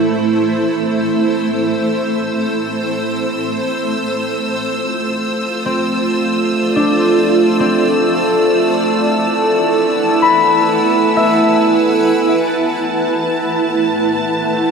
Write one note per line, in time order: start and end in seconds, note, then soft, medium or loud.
0.00 3.53 A3 medium
0.00 1.62 C4 soft
0.00 3.53 E4 medium
0.00 5.30 A4 medium
0.00 7.98 C5 medium
0.00 3.60 E5 medium
0.00 12.45 E6 medium
3.55 12.41 A3 medium
3.55 12.41 A4 medium
3.83 7.97 F4 medium
4.81 9.73 D5 medium
5.66 7.59 C4 medium
6.76 9.56 D4 medium
7.60 10.28 C4 medium
7.97 14.71 E4 medium
8.11 14.71 B4 medium
8.92 14.21 F#5 medium
9.82 12.42 G#5 medium
10.22 14.71 B5 medium
11.17 14.71 E5 medium
12.42 14.71 A3 medium
12.42 14.71 A4 medium
12.42 14.71 A5 medium
13.46 14.71 C5 medium